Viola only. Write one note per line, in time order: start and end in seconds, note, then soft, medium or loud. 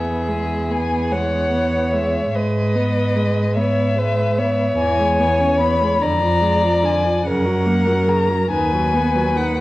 0.00 0.30 B3 soft
0.28 0.73 G#3 soft
0.71 1.13 B3 soft
1.11 1.51 G#3 soft
1.52 1.95 B3 soft
1.94 2.33 G#3 soft
2.34 2.76 G#3 soft
2.75 3.17 B3 soft
3.16 3.58 G#3 soft
3.56 3.96 B3 soft
3.97 4.40 G#3 soft
4.38 4.78 B3 soft
4.79 5.01 E3 soft
4.99 5.22 G#3 soft
5.20 5.41 B3 soft
5.40 5.62 C#4 soft
5.60 5.83 B3 soft
5.81 6.01 G#3 soft
6.01 6.23 D3 soft
6.21 6.43 F3 soft
6.42 6.64 G#3 soft
6.62 6.85 F3 soft
6.83 7.06 D3 soft
7.05 7.25 F3 soft
7.25 7.47 C#3 soft
7.46 7.68 F#3 soft
7.66 7.88 A#3 soft
7.87 8.09 F#3 soft
8.07 8.31 C#3 soft
8.29 8.49 F#3 soft
8.50 8.74 D#3 soft
8.73 8.95 F#3 soft
8.94 9.17 B3 soft
9.15 9.37 F#3 soft
9.36 9.60 D#3 soft